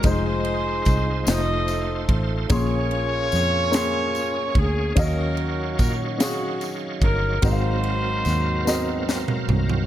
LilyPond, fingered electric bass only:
\new Staff \with { instrumentName = "Fingered electric bass" } { \clef bass \time 6/8 \key ees \dorian \tempo 4. = 49 f,,4 c,8 f,,4 a,,8 | bes,,4 f,4. d,8 | ees,4 bes,4. g,,8 | aes,,4 ees,4. c,8 | }